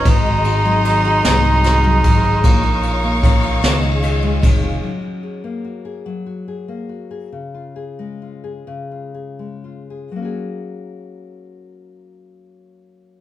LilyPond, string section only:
\new Staff \with { instrumentName = "String section" } { \time 6/8 \key fis \major \tempo 4. = 49 << { bis''2. | <eis'' cis'''>2. | r2. | r2. |
r2. | } \\ { <gis' dis'' ais''>2. | <ais' cis''>4. <gis' dis''>4. | r2. | r2. |
r2. | } >> }